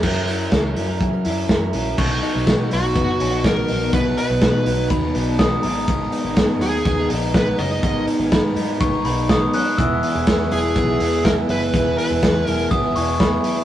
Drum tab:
CC |x-------|x-------|--------|--------|
RD |--------|--x-x-x-|x-x-x-x-|x-x-x-x-|
HH |-oxoxoxo|-opopopo|popopopo|popopopo|
SD |--o---o-|--o---o-|--o---o-|--o---o-|
BD |o-o-o-o-|o-o-o-o-|o-o-o-o-|o-o-o-o-|

CC |--------|--------|--------|
RD |x-x-x-x-|x-x-x-x-|x-x-x-x-|
HH |popopopo|popopopo|popopopo|
SD |--o---o-|--o---o-|--o---o-|
BD |o-o-o-o-|o-o-o-o-|o-o-o-o-|